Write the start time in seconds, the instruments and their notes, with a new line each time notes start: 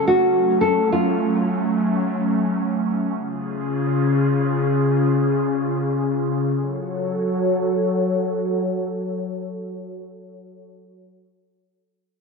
Already playing: analog synth pad F#3 A3 C#4
0.07 nylon-string guitar F#4
0.61 nylon-string guitar A4
0.92 nylon-string guitar F4
3.16 analog synth pad C#3 C#4 F4 G#4
6.56 analog synth pad F#3 F#4 A4 C#5